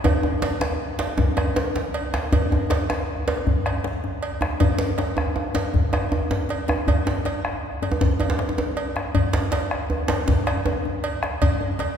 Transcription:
0.04 bombo low medium
0.04 cowbell soft
0.04 djembe tone loud
0.04 djembe bass medium
0.23 djembe slap soft
0.23 djembe tone medium
0.23 djembe tone soft
0.42 cowbell medium
0.42 djembe slap medium
0.61 bombo rim medium
0.61 djembe slap medium
0.99 bombo rim soft
0.99 cowbell soft
0.99 djembe slap medium
1.18 bombo low medium
1.18 djembe tone medium
1.18 djembe bass medium
1.37 bombo rim medium
1.37 cowbell soft
1.37 djembe tone medium
1.56 bombo rim soft
1.56 djembe slap medium
1.76 djembe slap medium
1.76 djembe tone medium
1.94 cowbell medium
2.14 bombo rim medium
2.14 djembe slap medium
2.14 djembe slap soft
2.32 bombo low medium
2.32 cowbell soft
2.32 djembe tone loud
2.32 djembe bass medium
2.51 djembe slap soft
2.51 djembe tone soft
2.51 djembe tone medium
2.70 cowbell soft
2.70 djembe slap medium
2.90 bombo rim medium
2.90 djembe slap medium
3.28 bombo rim soft
3.28 cowbell soft
3.28 djembe slap medium
3.47 bombo low medium
3.47 djembe bass medium
3.66 bombo rim medium
3.66 cowbell soft
3.84 bombo rim soft
3.84 djembe slap medium
4.04 djembe tone medium
4.23 cowbell soft
4.41 bombo rim medium
4.41 djembe slap medium
4.41 djembe tone medium
4.60 bombo rim soft
4.60 bombo low medium
4.60 cowbell soft
4.60 djembe tone medium
4.60 djembe bass medium
4.79 djembe slap medium
4.79 djembe tone medium
4.98 cowbell soft
4.98 djembe slap medium
5.17 bombo rim medium
5.17 djembe tone medium
5.36 djembe slap soft
5.36 djembe tone medium
5.54 cowbell soft
5.54 djembe slap medium
5.54 djembe tone medium
5.74 bombo low medium
5.74 djembe slap soft
5.74 djembe bass medium
5.93 bombo rim medium
5.93 cowbell soft
5.93 djembe tone medium
6.12 djembe tone medium
6.12 djembe bass soft
6.31 djembe slap medium
6.31 djembe bass soft
6.49 cowbell soft
6.49 djembe slap soft
6.68 bombo rim medium
6.68 djembe slap medium
6.68 djembe tone medium
6.87 bombo low medium
6.87 cowbell soft
6.87 djembe tone medium
6.87 djembe bass medium
7.06 djembe slap soft
7.06 djembe slap medium
7.06 djembe tone soft
7.25 cowbell soft
7.25 djembe slap medium
7.45 bombo rim medium
7.82 bombo rim soft
7.82 cowbell soft
7.82 djembe slap medium
7.82 djembe tone medium
7.92 djembe tone medium
8.01 bombo low medium
8.01 djembe slap medium
8.01 djembe bass medium
8.20 cowbell soft
8.20 djembe tone medium
8.30 djembe slap medium
8.39 bombo rim soft
8.39 djembe slap medium
8.49 djembe tone medium
8.58 djembe slap medium
8.58 djembe tone medium
8.77 cowbell soft
8.96 bombo rim medium
8.96 djembe slap medium
9.15 bombo low medium
9.15 cowbell soft
9.15 djembe bass medium
9.33 djembe slap medium
9.33 djembe slap soft
9.33 djembe tone medium
9.52 cowbell medium
9.52 djembe slap medium
9.71 bombo rim medium
9.90 djembe tone medium
10.08 bombo rim soft
10.08 cowbell soft
10.08 djembe slap medium
10.08 djembe tone medium
10.28 bombo low loud
10.28 djembe slap medium
10.28 djembe bass medium
10.47 bombo rim medium
10.47 cowbell soft
10.65 bombo rim soft
10.65 djembe slap medium
10.65 djembe tone medium
10.85 djembe tone medium
11.04 cowbell medium
11.23 bombo rim medium
11.23 djembe slap medium
11.42 bombo low loud
11.42 cowbell medium
11.42 djembe bass medium
11.61 djembe slap soft
11.61 djembe tone soft
11.79 cowbell soft
11.79 djembe slap medium

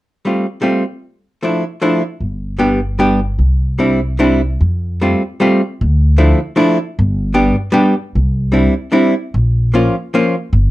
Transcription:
0.25 0.45 G3 soft
0.25 0.45 A3 soft
0.25 0.45 C4 soft
0.25 0.45 F4 soft
0.62 0.83 G3 medium
0.62 0.83 A3 medium
0.62 0.83 C4 soft
0.62 0.83 F4 medium
1.43 1.63 F3 medium
1.43 1.62 A3 soft
1.43 1.63 D4 soft
1.43 1.63 E4 medium
1.82 2.02 F3 medium
1.82 2.01 A3 medium
1.82 2.01 D4 soft
1.82 2.02 E4 medium
2.21 3.36 G1 medium
2.59 2.79 G3 medium
2.59 2.79 B3 medium
2.59 2.79 D4 soft
2.59 2.79 G4 medium
2.99 3.19 G3 medium
2.99 3.19 B3 medium
2.99 3.19 D4 medium
2.99 3.19 G4 medium
3.39 4.58 C2 medium
3.79 3.99 G3 medium
3.79 4.00 C4 soft
3.79 3.99 D4 soft
3.79 3.99 E4 soft
4.19 4.40 G3 medium
4.19 4.40 C4 medium
4.19 4.41 D4 medium
4.19 4.40 E4 medium
4.61 5.13 F2 medium
5.01 5.22 G3 medium
5.01 5.21 A3 soft
5.01 5.22 C4 soft
5.01 5.22 F4 soft
5.40 5.61 G3 medium
5.40 5.61 A3 medium
5.40 5.61 C4 medium
5.40 5.61 F4 medium
5.81 6.32 D2 medium
6.18 6.39 F3 medium
6.18 6.39 A3 medium
6.18 6.39 D4 soft
6.18 6.39 E4 soft
6.56 6.77 F3 medium
6.56 6.77 A3 medium
6.56 6.77 D4 medium
6.56 6.77 E4 medium
6.99 7.49 G1 medium
7.34 7.55 G3 medium
7.34 7.55 B3 medium
7.34 7.55 D4 medium
7.34 7.55 G4 medium
7.72 7.93 G3 medium
7.72 7.94 B3 medium
7.72 7.94 D4 medium
7.72 7.94 G4 medium
8.15 8.66 C2 medium
8.52 8.73 G3 soft
8.52 8.73 C4 soft
8.52 8.74 D4 soft
8.52 8.73 E4 soft
8.92 9.13 G3 medium
8.92 9.13 C4 soft
8.92 9.13 D4 medium
8.92 9.13 E4 medium
9.34 9.86 A#1 medium
9.74 9.95 F3 medium
9.74 9.94 A#3 soft
9.74 9.95 C#4 soft
9.74 9.95 F4 medium
10.14 10.34 F3 medium
10.14 10.35 A#3 medium
10.14 10.35 C#4 soft
10.14 10.35 F4 medium
10.53 10.71 G1 medium

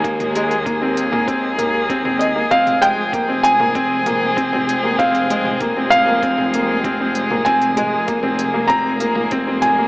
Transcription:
0.00 2.49 D#2 medium
0.00 2.48 D#3 medium
0.00 2.48 G#3 medium
0.00 2.48 A#3 medium
0.00 9.88 G#4 medium
0.00 1.84 G#5 medium
0.04 0.24 A#3 medium
0.04 kick loud
0.04 closed hi-hat soft
0.20 closed hi-hat soft
0.20 mid tom medium
0.35 0.55 G#3 medium
0.35 closed hi-hat medium
0.51 closed hi-hat soft
0.66 0.76 A#3 medium
0.66 kick loud
0.66 closed hi-hat soft
0.66 mid tom medium
0.82 1.02 C4 medium
0.97 closed hi-hat medium
1.12 1.22 A#3 medium
1.12 mid tom medium
1.27 1.47 C4 medium
1.27 kick loud
1.27 closed hi-hat soft
1.58 1.78 A#3 medium
1.58 closed hi-hat medium
1.58 mid tom medium
1.90 2.00 C4 medium
1.90 kick loud
1.90 closed hi-hat soft
2.05 2.25 C4 medium
2.05 mid tom medium
2.19 2.52 D#5 medium
2.19 closed hi-hat medium
2.35 2.46 A#3 medium
2.51 9.88 F1 medium
2.51 9.88 F3 medium
2.51 9.88 G#3 medium
2.51 7.42 C4 medium
2.51 2.71 C4 medium
2.51 2.83 F5 loud
2.51 kick loud
2.51 closed hi-hat soft
2.67 closed hi-hat soft
2.67 mid tom medium
2.81 3.02 G#3 medium
2.81 3.46 G5 loud
2.81 closed hi-hat medium
3.13 3.23 A#3 medium
3.13 kick loud
3.13 closed hi-hat soft
3.13 mid tom medium
3.29 3.49 C4 medium
3.43 5.03 G#5 loud
3.43 closed hi-hat medium
3.60 3.70 A#3 medium
3.60 mid tom medium
3.75 3.95 C4 medium
3.75 kick loud
3.75 closed hi-hat soft
4.06 4.26 A#3 medium
4.06 closed hi-hat medium
4.06 mid tom medium
4.37 4.47 C4 medium
4.37 kick loud
4.37 closed hi-hat soft
4.53 4.73 C4 medium
4.53 mid tom medium
4.69 closed hi-hat medium
4.84 4.94 A#3 medium
4.99 5.19 C4 loud
4.99 5.57 F5 medium
4.99 kick loud
4.99 closed hi-hat soft
4.99 mid tom medium
5.15 closed hi-hat soft
5.30 5.50 G#3 medium
5.30 closed hi-hat medium
5.45 mid tom medium
5.60 5.71 A#3 medium
5.60 kick loud
5.60 closed hi-hat soft
5.77 5.97 C4 medium
5.90 7.11 F5 loud
5.90 closed hi-hat medium
5.90 mid tom medium
6.07 6.17 A#3 medium
6.23 6.43 C4 medium
6.23 kick loud
6.23 closed hi-hat soft
6.38 mid tom medium
6.54 6.74 A#3 medium
6.54 closed hi-hat medium
6.84 6.95 C4 medium
6.84 kick loud
6.84 closed hi-hat soft
6.84 mid tom medium
7.00 7.20 C4 medium
7.15 closed hi-hat medium
7.31 7.41 A#3 medium
7.31 mid tom medium
7.45 9.88 A#3 medium
7.45 7.66 C4 loud
7.45 8.73 G#5 loud
7.45 kick loud
7.45 closed hi-hat soft
7.62 closed hi-hat soft
7.77 7.97 G#3 medium
7.77 closed hi-hat medium
7.77 mid tom medium
8.08 8.18 A#3 medium
8.08 kick loud
8.08 closed hi-hat soft
8.23 8.43 C4 medium
8.23 mid tom medium
8.39 closed hi-hat medium
8.54 8.64 A#3 medium
8.68 8.90 C4 medium
8.68 9.27 A#5 loud
8.68 kick loud
8.68 closed hi-hat soft
8.68 mid tom medium
9.00 9.21 A#3 medium
9.00 closed hi-hat medium
9.15 mid tom medium
9.31 9.42 C4 medium
9.31 kick loud
9.31 closed hi-hat soft
9.47 9.67 C4 medium
9.62 9.88 G#5 medium
9.62 closed hi-hat medium
9.62 mid tom medium
9.79 9.88 A#3 medium

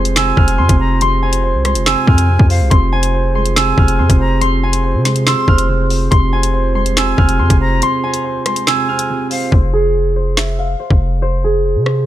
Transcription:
0.00 0.33 F1 loud
0.00 0.15 C3 loud
0.00 1.01 G#3 medium
0.00 0.35 C4 medium
0.00 6.08 F4 medium
0.00 2.67 G#4 medium
0.00 0.78 C5 medium
0.00 6.08 C5 medium
0.00 1.02 G#5 medium
0.00 0.58 C6 medium
0.05 closed hi-hat medium
0.16 0.58 C3 medium
0.16 0.76 G#5 medium
0.16 0.43 E6 medium
0.16 finger snap loud
0.16 snare loud
0.16 closed hi-hat medium
0.37 0.60 F1 loud
0.37 1.21 C4 medium
0.37 1.46 F6 medium
0.37 kick medium
0.48 closed hi-hat medium
0.58 0.69 F2 loud
0.58 1.00 C3 medium
0.58 1.01 C6 medium
0.69 1.56 F1 loud
0.69 kick loud
0.69 closed hi-hat medium
0.80 1.42 C5 medium
0.80 1.00 A#5 medium
1.01 1.84 C3 medium
1.01 1.64 C6 loud
1.01 closed hi-hat medium
1.23 2.06 C4 medium
1.23 2.73 G#5 medium
1.33 closed hi-hat medium
1.43 2.48 C5 medium
1.54 1.77 C2 loud
1.65 2.71 G#3 medium
1.65 2.70 C6 medium
1.65 cross-stick loud
1.65 closed hi-hat medium
1.75 1.96 F1 loud
1.75 closed hi-hat medium
1.86 2.28 C3 medium
1.86 2.46 G#5 loud
1.86 2.14 E6 loud
1.86 finger snap loud
1.86 snare loud
2.07 2.38 F2 loud
2.07 2.71 C4 medium
2.07 3.17 F6 medium
2.07 kick loud
2.18 closed hi-hat medium
2.29 2.69 C3 medium
2.39 2.62 F2 loud
2.39 kick loud
2.49 2.71 C5 medium
2.49 2.70 F5 medium
2.49 open hi-hat medium
2.61 2.71 C2 loud
2.70 3.74 F1 loud
2.70 3.55 C3 medium
2.70 9.48 G#4 medium
2.70 3.35 C6 loud
2.70 kick loud
2.70 closed hi-hat medium
2.92 3.76 C4 medium
2.92 4.42 G#5 medium
3.03 closed hi-hat medium
3.14 4.18 C5 medium
3.35 4.42 G#3 medium
3.35 3.98 C6 medium
3.46 closed hi-hat medium
3.56 3.98 C3 medium
3.56 4.16 G#5 medium
3.56 3.84 E6 medium
3.56 finger snap loud
3.56 snare loud
3.56 closed hi-hat medium
3.78 4.00 F1 loud
3.78 4.61 C4 medium
3.78 4.88 F6 medium
3.78 kick loud
3.88 closed hi-hat medium
3.99 4.09 F2 loud
3.99 4.40 C3 medium
3.99 4.41 C6 medium
4.10 4.96 F1 loud
4.10 kick loud
4.10 closed hi-hat medium
4.20 4.82 C5 medium
4.20 4.40 A#5 medium
4.41 5.25 C3 medium
4.41 5.04 C6 loud
4.41 closed hi-hat medium
4.63 5.46 C4 medium
4.63 6.13 G#5 medium
4.73 closed hi-hat medium
4.84 5.89 C5 loud
4.95 5.35 C3 loud
5.05 6.12 G#3 medium
5.05 6.10 C6 medium
5.05 snare medium
5.05 closed hi-hat medium
5.16 closed hi-hat medium
5.27 5.67 C3 medium
5.27 5.67 C6 loud
5.27 5.54 E6 medium
5.27 finger snap loud
5.27 snare loud
5.48 6.09 F1 loud
5.48 6.12 C4 loud
5.48 6.58 F6 medium
5.48 kick loud
5.58 closed hi-hat medium
5.69 6.10 C3 medium
5.90 6.12 C5 medium
5.90 open hi-hat medium
6.11 7.14 F1 loud
6.11 6.96 C3 loud
6.11 9.49 F4 medium
6.11 9.49 C5 medium
6.11 6.75 C6 loud
6.11 kick loud
6.11 closed hi-hat medium
6.32 7.16 C4 medium
6.32 7.83 G#5 medium
6.43 closed hi-hat medium
6.54 7.59 C5 medium
6.75 7.82 G#3 medium
6.75 7.39 C6 medium
6.86 closed hi-hat medium
6.97 7.39 C3 medium
6.97 7.57 G#5 medium
6.97 7.23 E6 medium
6.97 finger snap loud
6.97 snare loud
6.97 closed hi-hat medium
7.17 7.41 F1 loud
7.17 8.02 C4 medium
7.17 8.27 F6 medium
7.17 kick loud
7.29 closed hi-hat medium
7.39 7.49 F2 loud
7.39 7.81 C3 medium
7.39 7.82 C6 medium
7.50 7.82 F1 loud
7.50 kick loud
7.50 closed hi-hat loud
7.61 8.23 C5 medium
7.61 7.81 A#5 medium
7.82 8.65 C3 medium
7.82 8.45 C6 loud
7.82 closed hi-hat medium
8.04 8.87 C4 medium
8.04 9.54 G#5 medium
8.14 closed hi-hat medium
8.24 9.29 C5 medium
8.46 9.52 G#3 medium
8.46 9.76 C6 medium
8.46 cross-stick loud
8.46 closed hi-hat medium
8.56 closed hi-hat medium
8.67 9.08 C3 medium
8.67 9.27 G#5 loud
8.67 8.95 E6 medium
8.67 finger snap loud
8.67 snare loud
8.89 9.52 C4 medium
8.89 9.98 F6 medium
8.99 closed hi-hat medium
9.10 9.52 C3 medium
9.30 9.52 C5 medium
9.30 9.51 F5 medium
9.30 open hi-hat medium
9.51 10.76 F1 loud
9.51 10.16 C5 loud
9.51 kick loud
9.73 11.44 G#4 medium
10.16 10.79 C5 medium
10.37 10.65 E5 medium
10.37 finger snap medium
10.37 snare loud
10.59 12.06 F5 medium
10.80 11.22 C5 medium
10.90 11.77 F1 loud
10.90 kick medium
11.22 11.85 C5 loud
11.44 12.06 G#4 medium
11.76 12.06 C3 loud
11.86 12.06 C5 medium
11.86 cross-stick loud

